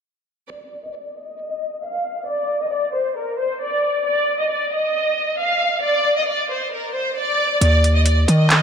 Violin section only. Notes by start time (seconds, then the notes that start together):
0.50 D5
0.84 D#5
0.95 D5
1.17 D#5
1.84 F5
2.28 D5
2.61 D#5
2.73 D5
2.94 C5
3.17 A#4
3.39 C5
3.61 D5
4.06 D5
4.39 D#5
4.50 D5
4.73 D#5
5.39 F5
5.84 D5
6.17 D#5
6.28 D5
6.50 C5
6.73 A#4
6.95 C5
7.17 D5
7.61 D5
7.95 D#5
8.06 D5
8.28 D#5